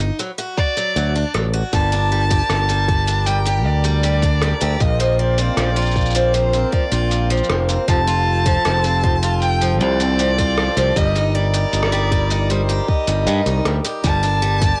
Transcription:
0.00 D#4, shaker
0.19 F#3, shaker
0.38 F#4, shaker
0.58 D5, kick
0.77 F#3, shaker
0.96 D2 F#3, shaker
1.15 D4, shaker
1.34 A1 F#3, cross-stick
1.54 F#4
1.73 G1 G3 D4 A#4 A5, kick, closed hi-hat, shaker
1.92 D4, closed hi-hat, shaker
2.12 G3
2.31 G4, kick, closed hi-hat, shaker
2.50 G1, cross-stick, closed hi-hat, shaker
2.69 G3, closed hi-hat, shaker
2.88 G3, kick
3.07 D4, closed hi-hat, shaker
3.26 G3 G5, closed hi-hat, shaker
3.46 G4, closed hi-hat, shaker
3.65 D2 D5
3.84 G3, closed hi-hat, shaker
4.03 G3, closed hi-hat, shaker
4.22 D4, kick, closed hi-hat, shaker
4.42 G3, cross-stick
4.61 D2 G4, closed hi-hat, shaker
4.80 A#1 A#3 C4 F4 D#5, kick, closed hi-hat, shaker
5.00 F3, closed hi-hat, shaker
5.11 D#5
5.19 F3 D5
5.38 C4, closed hi-hat, shaker
5.57 A#1 F3, cross-stick, closed hi-hat, shaker
5.76 F4, closed hi-hat, shaker
5.81 shaker
5.86 shaker
5.91 shaker
5.96 kick, shaker
6.01 shaker
6.06 shaker
6.10 shaker
6.15 F3, closed hi-hat, shaker
6.34 F3 C5, closed hi-hat, shaker
6.53 C4, closed hi-hat, shaker
6.72 F3 D5, kick
6.92 A#1 F4, closed hi-hat, shaker
7.11 closed hi-hat, shaker
7.30 F3, closed hi-hat, shaker
7.37 shaker
7.44 shaker
7.50 F1 F3, cross-stick
7.69 C4, closed hi-hat, shaker
7.88 F1 F3 A4 A5, kick, closed hi-hat, shaker
8.07 F4, closed hi-hat, shaker
8.46 F3, kick, closed hi-hat, shaker
8.65 F1 F3, cross-stick, closed hi-hat, shaker
8.84 C4, closed hi-hat, shaker
9.03 F3, kick
9.23 F4, closed hi-hat, shaker
9.42 G5, closed hi-hat, shaker
9.61 F3, closed hi-hat, shaker
9.80 C2 F3 D5
10.00 C4, closed hi-hat, shaker
10.19 F3, closed hi-hat, shaker
10.38 F4, kick, closed hi-hat, shaker
10.57 cross-stick
10.77 C2 F3, closed hi-hat, shaker
10.96 G1 G3 D#4 A#4 D#5, kick, closed hi-hat, shaker
11.15 D#4, closed hi-hat, shaker
11.34 G3 D5
11.54 G4, closed hi-hat, shaker
11.73 G1, closed hi-hat, shaker
11.83 cross-stick
11.92 G3, closed hi-hat, shaker
12.11 G3, kick
12.30 D#4, closed hi-hat, shaker
12.50 G3 C5, closed hi-hat, shaker
12.69 G4, closed hi-hat, shaker
12.88 D#5, kick
13.07 G1 G3, closed hi-hat, shaker
13.27 G2 G3, closed hi-hat, shaker
13.46 C2 D#4, closed hi-hat, shaker
13.65 D2 G3, cross-stick
13.84 G4, closed hi-hat, shaker
14.03 G1 G3 D4 A5, kick, closed hi-hat, shaker
14.23 D4, closed hi-hat, shaker
14.42 G3
14.62 G4, kick, closed hi-hat, shaker

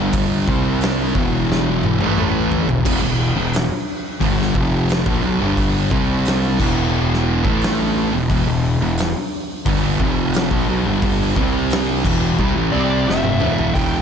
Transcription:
Already playing: G1 G2 D3 G3
0.13 kick, open hi-hat
0.47 C2 C3 G3 C4, kick
0.81 snare, open hi-hat
1.15 E1 E2 B2 E3, kick
1.52 snare
1.83 high tom
1.99 A1 A2 E3 A3, high tom
2.18 mid tom
2.52 floor tom
2.67 E1 E2 B2, floor tom
2.85 E1 E2 B2, kick, open hi-hat, crash
3.01 E1 E2 B2
3.36 E1 E2 B2
3.53 snare, open hi-hat
4.20 G1 G2 D3 G3, kick, open hi-hat
4.42 snare
4.54 F1 F2 C3 F3, kick
4.89 snare, open hi-hat
5.05 A#1 A#2 F3, kick
5.22 B1 B2 F#3
5.40 G1 G2 D3 G3
5.57 kick, open hi-hat
5.90 C2 C3 G3 C4, kick
6.25 snare, open hi-hat
6.58 E1 E2 B2 E3, kick, crash
7.14 snare
7.44 A1 A2 E3 A3, kick
7.62 snare, open hi-hat
8.13 E1 E2 B2
8.30 E1 E2 B2, kick, open hi-hat
8.46 E1 E2 B2
8.80 E1 E2 B2
8.98 snare, open hi-hat
9.66 G1 G2 D3 G3, kick, open hi-hat
10.00 F1 F2 C3 F3, kick
10.34 snare, open hi-hat
10.51 A#1 A#2 F3, kick
10.68 B1 B2 F#3
10.86 G1 G2 D3 G3
11.02 kick, open hi-hat
11.36 C2 C3 G3 C4, kick
11.70 snare, open hi-hat
12.04 E1 E2 B2 E3, kick, crash
12.39 C2 C3 G3, kick
12.56 A1 A2 E3
12.72 C2 C3 G3 C4 D5
13.07 F1 F2 C3 F3 E5, snare
13.23 high tom
13.40 E1 E2 B2 E3, mid tom
13.58 floor tom
13.74 E1 E2 B2 E3 G5, kick, open hi-hat

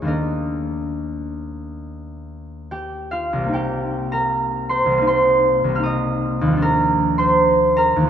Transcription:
Already playing: C#2 G#2 G#3 B3 F4 G#4 B4 C#5 F5
0.02 D#2 G3 A#3 D4
0.07 A#4 D#5
2.71 G4 G5
3.11 F4 F5
3.33 C2
3.38 G3
3.44 A#3
3.48 D#4
3.53 G4 G5
4.12 A#4 A#5
4.69 C5 C6
4.86 C2
4.91 G3
4.97 A#3
5.01 D#4
5.07 C5 C6
5.64 C2
5.69 G3
5.75 A#3 F6
5.79 D#4
5.83 D#5 D#6
6.41 D#2
6.47 F3
6.52 G3
6.57 D4
6.62 A#4 A#5
7.18 C5 C6
7.77 A#4 A#5
7.96 D#2
8.01 F3

